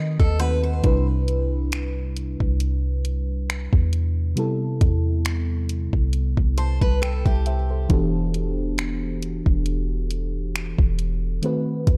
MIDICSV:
0, 0, Header, 1, 5, 480
1, 0, Start_track
1, 0, Key_signature, 1, "minor"
1, 0, Tempo, 882353
1, 458, Time_signature, 4, 2, 24, 8
1, 6513, End_track
2, 0, Start_track
2, 0, Title_t, "Steel-string acoustic guitar"
2, 0, Program_c, 0, 25
2, 106, Note_on_c, 0, 69, 75
2, 216, Note_off_c, 0, 69, 0
2, 216, Note_on_c, 0, 71, 81
2, 340, Note_off_c, 0, 71, 0
2, 345, Note_on_c, 0, 72, 71
2, 574, Note_off_c, 0, 72, 0
2, 3578, Note_on_c, 0, 72, 71
2, 3701, Note_off_c, 0, 72, 0
2, 3707, Note_on_c, 0, 71, 75
2, 3812, Note_off_c, 0, 71, 0
2, 3818, Note_on_c, 0, 69, 81
2, 3941, Note_off_c, 0, 69, 0
2, 3947, Note_on_c, 0, 67, 72
2, 4280, Note_off_c, 0, 67, 0
2, 6513, End_track
3, 0, Start_track
3, 0, Title_t, "FM electric piano"
3, 0, Program_c, 1, 5
3, 0, Control_c, 1, 64, 127
3, 0, Note_on_c, 1, 51, 75
3, 0, Note_on_c, 1, 57, 64
3, 0, Note_on_c, 1, 60, 68
3, 0, Note_on_c, 1, 66, 64
3, 0, Note_on_c, 1, 71, 81
3, 0, Note_on_c, 1, 75, 68
3, 191, Note_off_c, 1, 51, 0
3, 194, Note_off_c, 1, 57, 0
3, 196, Note_off_c, 1, 60, 0
3, 199, Note_off_c, 1, 66, 0
3, 201, Note_off_c, 1, 71, 0
3, 201, Note_off_c, 1, 75, 0
3, 214, Note_on_c, 1, 51, 57
3, 216, Note_on_c, 1, 57, 52
3, 219, Note_on_c, 1, 60, 52
3, 219, Note_on_c, 1, 78, 71
3, 222, Note_on_c, 1, 66, 48
3, 225, Note_on_c, 1, 71, 64
3, 441, Note_off_c, 1, 78, 0
3, 447, Note_on_c, 1, 48, 74
3, 453, Note_on_c, 1, 55, 64
3, 456, Note_off_c, 1, 51, 0
3, 457, Note_off_c, 1, 57, 0
3, 458, Note_off_c, 1, 60, 0
3, 458, Note_on_c, 1, 62, 68
3, 460, Note_off_c, 1, 66, 0
3, 461, Note_off_c, 1, 71, 0
3, 463, Note_on_c, 1, 64, 67
3, 464, Control_c, 1, 64, 0
3, 468, Note_on_c, 1, 71, 83
3, 563, Control_c, 1, 64, 127
3, 2351, Note_off_c, 1, 48, 0
3, 2354, Note_off_c, 1, 55, 0
3, 2356, Note_off_c, 1, 62, 0
3, 2359, Note_off_c, 1, 64, 0
3, 2361, Note_off_c, 1, 71, 0
3, 2369, Note_on_c, 1, 48, 75
3, 2374, Note_on_c, 1, 55, 65
3, 2380, Note_on_c, 1, 59, 66
3, 2385, Note_on_c, 1, 64, 67
3, 2386, Control_c, 1, 64, 0
3, 2390, Note_on_c, 1, 69, 79
3, 2493, Control_c, 1, 64, 127
3, 3562, Note_off_c, 1, 69, 0
3, 3581, Note_on_c, 1, 81, 65
3, 3802, Note_off_c, 1, 81, 0
3, 3821, Note_on_c, 1, 79, 66
3, 3945, Note_off_c, 1, 79, 0
3, 3952, Note_on_c, 1, 79, 61
3, 3954, Note_on_c, 1, 76, 53
3, 4054, Note_off_c, 1, 79, 0
3, 4056, Note_off_c, 1, 76, 0
3, 4061, Note_on_c, 1, 76, 69
3, 4065, Note_on_c, 1, 72, 54
3, 4183, Note_off_c, 1, 76, 0
3, 4184, Note_off_c, 1, 72, 0
3, 4191, Note_on_c, 1, 72, 62
3, 4194, Note_on_c, 1, 69, 54
3, 4272, Note_off_c, 1, 48, 0
3, 4274, Note_off_c, 1, 55, 0
3, 4277, Note_off_c, 1, 59, 0
3, 4279, Note_off_c, 1, 64, 0
3, 4291, Note_on_c, 1, 52, 72
3, 4295, Note_on_c, 1, 59, 64
3, 4299, Note_on_c, 1, 62, 71
3, 4303, Note_on_c, 1, 66, 68
3, 4304, Note_off_c, 1, 69, 0
3, 4305, Control_c, 1, 64, 0
3, 4307, Note_on_c, 1, 67, 67
3, 4311, Note_on_c, 1, 69, 82
3, 4400, Control_c, 1, 64, 127
3, 4417, Note_off_c, 1, 72, 0
3, 6192, Note_off_c, 1, 52, 0
3, 6195, Note_off_c, 1, 59, 0
3, 6197, Note_off_c, 1, 62, 0
3, 6198, Note_off_c, 1, 66, 0
3, 6200, Note_off_c, 1, 67, 0
3, 6202, Note_off_c, 1, 69, 0
3, 6213, Note_on_c, 1, 51, 72
3, 6218, Note_on_c, 1, 57, 69
3, 6223, Note_on_c, 1, 60, 67
3, 6224, Control_c, 1, 64, 0
3, 6228, Note_on_c, 1, 66, 69
3, 6232, Note_on_c, 1, 71, 82
3, 6312, Control_c, 1, 64, 127
3, 6513, Note_off_c, 1, 51, 0
3, 6513, Note_off_c, 1, 57, 0
3, 6513, Note_off_c, 1, 60, 0
3, 6513, Note_off_c, 1, 66, 0
3, 6513, Note_off_c, 1, 71, 0
3, 6513, End_track
4, 0, Start_track
4, 0, Title_t, "808-style bass"
4, 0, Program_c, 2, 38
4, 0, Note_on_c, 2, 51, 96
4, 98, Note_off_c, 2, 51, 0
4, 108, Note_on_c, 2, 39, 92
4, 444, Note_off_c, 2, 39, 0
4, 459, Note_on_c, 2, 36, 104
4, 1286, Note_off_c, 2, 36, 0
4, 1309, Note_on_c, 2, 36, 96
4, 2006, Note_off_c, 2, 36, 0
4, 2030, Note_on_c, 2, 40, 99
4, 2365, Note_off_c, 2, 40, 0
4, 2619, Note_on_c, 2, 40, 100
4, 3206, Note_off_c, 2, 40, 0
4, 3228, Note_on_c, 2, 36, 91
4, 3458, Note_off_c, 2, 36, 0
4, 3469, Note_on_c, 2, 36, 100
4, 3698, Note_off_c, 2, 36, 0
4, 3709, Note_on_c, 2, 36, 94
4, 3938, Note_off_c, 2, 36, 0
4, 3948, Note_on_c, 2, 36, 97
4, 4284, Note_off_c, 2, 36, 0
4, 4299, Note_on_c, 2, 28, 100
4, 5126, Note_off_c, 2, 28, 0
4, 5148, Note_on_c, 2, 28, 94
4, 5846, Note_off_c, 2, 28, 0
4, 5868, Note_on_c, 2, 28, 98
4, 6204, Note_off_c, 2, 28, 0
4, 6459, Note_on_c, 2, 39, 100
4, 6513, Note_off_c, 2, 39, 0
4, 6513, End_track
5, 0, Start_track
5, 0, Title_t, "Drums"
5, 107, Note_on_c, 9, 36, 93
5, 161, Note_off_c, 9, 36, 0
5, 215, Note_on_c, 9, 42, 64
5, 270, Note_off_c, 9, 42, 0
5, 455, Note_on_c, 9, 42, 62
5, 457, Note_on_c, 9, 36, 112
5, 510, Note_off_c, 9, 42, 0
5, 512, Note_off_c, 9, 36, 0
5, 696, Note_on_c, 9, 42, 57
5, 751, Note_off_c, 9, 42, 0
5, 936, Note_on_c, 9, 42, 64
5, 941, Note_on_c, 9, 26, 121
5, 991, Note_off_c, 9, 42, 0
5, 995, Note_off_c, 9, 26, 0
5, 1178, Note_on_c, 9, 42, 66
5, 1232, Note_off_c, 9, 42, 0
5, 1307, Note_on_c, 9, 36, 79
5, 1362, Note_off_c, 9, 36, 0
5, 1415, Note_on_c, 9, 42, 62
5, 1470, Note_off_c, 9, 42, 0
5, 1658, Note_on_c, 9, 42, 63
5, 1713, Note_off_c, 9, 42, 0
5, 1903, Note_on_c, 9, 26, 108
5, 1903, Note_on_c, 9, 42, 61
5, 1957, Note_off_c, 9, 42, 0
5, 1958, Note_off_c, 9, 26, 0
5, 2028, Note_on_c, 9, 36, 92
5, 2082, Note_off_c, 9, 36, 0
5, 2137, Note_on_c, 9, 42, 67
5, 2192, Note_off_c, 9, 42, 0
5, 2377, Note_on_c, 9, 42, 64
5, 2431, Note_off_c, 9, 42, 0
5, 2617, Note_on_c, 9, 42, 62
5, 2618, Note_on_c, 9, 36, 89
5, 2672, Note_off_c, 9, 36, 0
5, 2672, Note_off_c, 9, 42, 0
5, 2856, Note_on_c, 9, 42, 66
5, 2860, Note_on_c, 9, 26, 118
5, 2910, Note_off_c, 9, 42, 0
5, 2915, Note_off_c, 9, 26, 0
5, 3097, Note_on_c, 9, 42, 63
5, 3152, Note_off_c, 9, 42, 0
5, 3227, Note_on_c, 9, 36, 82
5, 3281, Note_off_c, 9, 36, 0
5, 3335, Note_on_c, 9, 42, 65
5, 3389, Note_off_c, 9, 42, 0
5, 3467, Note_on_c, 9, 36, 89
5, 3522, Note_off_c, 9, 36, 0
5, 3578, Note_on_c, 9, 42, 62
5, 3632, Note_off_c, 9, 42, 0
5, 3707, Note_on_c, 9, 36, 81
5, 3762, Note_off_c, 9, 36, 0
5, 3823, Note_on_c, 9, 26, 104
5, 3823, Note_on_c, 9, 42, 60
5, 3877, Note_off_c, 9, 42, 0
5, 3878, Note_off_c, 9, 26, 0
5, 3947, Note_on_c, 9, 36, 91
5, 4002, Note_off_c, 9, 36, 0
5, 4058, Note_on_c, 9, 42, 62
5, 4112, Note_off_c, 9, 42, 0
5, 4296, Note_on_c, 9, 42, 59
5, 4297, Note_on_c, 9, 36, 115
5, 4351, Note_off_c, 9, 42, 0
5, 4352, Note_off_c, 9, 36, 0
5, 4539, Note_on_c, 9, 42, 61
5, 4593, Note_off_c, 9, 42, 0
5, 4776, Note_on_c, 9, 42, 66
5, 4781, Note_on_c, 9, 26, 123
5, 4831, Note_off_c, 9, 42, 0
5, 4835, Note_off_c, 9, 26, 0
5, 5018, Note_on_c, 9, 42, 63
5, 5073, Note_off_c, 9, 42, 0
5, 5147, Note_on_c, 9, 36, 78
5, 5201, Note_off_c, 9, 36, 0
5, 5254, Note_on_c, 9, 42, 63
5, 5308, Note_off_c, 9, 42, 0
5, 5497, Note_on_c, 9, 42, 62
5, 5552, Note_off_c, 9, 42, 0
5, 5742, Note_on_c, 9, 42, 64
5, 5743, Note_on_c, 9, 26, 100
5, 5796, Note_off_c, 9, 42, 0
5, 5797, Note_off_c, 9, 26, 0
5, 5867, Note_on_c, 9, 36, 95
5, 5922, Note_off_c, 9, 36, 0
5, 5977, Note_on_c, 9, 42, 63
5, 6031, Note_off_c, 9, 42, 0
5, 6216, Note_on_c, 9, 42, 61
5, 6271, Note_off_c, 9, 42, 0
5, 6458, Note_on_c, 9, 36, 97
5, 6458, Note_on_c, 9, 42, 58
5, 6512, Note_off_c, 9, 36, 0
5, 6512, Note_off_c, 9, 42, 0
5, 6513, End_track
0, 0, End_of_file